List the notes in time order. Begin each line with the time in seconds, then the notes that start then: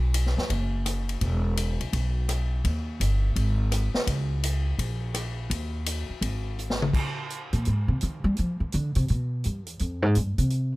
Already playing: B1
0.14 hi-hat pedal, ride
0.26 snare
0.37 F#2, snare
0.50 F#1, kick, ride
0.86 cross-stick, hi-hat pedal, ride
1.09 ride
1.21 E1, kick, ride
1.57 hi-hat pedal, ride
1.80 B1, ride
1.93 B1, kick, ride
2.29 cross-stick, hi-hat pedal, ride
2.64 D#2, kick, ride
3.00 G1, hi-hat pedal, ride
3.36 G#1, kick, ride
3.72 cross-stick, hi-hat pedal, ride
3.95 snare
4.07 C#2, kick, ride
4.43 hi-hat pedal, ride
4.78 A#1, kick, ride
5.14 cross-stick, hi-hat pedal, ride
5.50 D#2, kick, ride
5.86 hi-hat pedal, ride
6.09 muted upright bass stroke
6.21 G#1, kick, ride
6.58 hi-hat pedal
6.70 snare
6.82 mid tom
6.93 kick, crash
7.30 closed hi-hat
7.53 A#2, closed hi-hat
7.65 G#2, closed hi-hat
7.88 C3
8.01 D#3, closed hi-hat
8.24 G3
8.37 F3, closed hi-hat
8.60 E3
8.72 D3, closed hi-hat
8.95 C3, closed hi-hat
9.08 B2, closed hi-hat
9.44 G2, closed hi-hat
9.66 E2, closed hi-hat
9.79 F2, closed hi-hat
10.02 G#2
10.15 G2, closed hi-hat
10.38 C3, closed hi-hat
10.50 closed hi-hat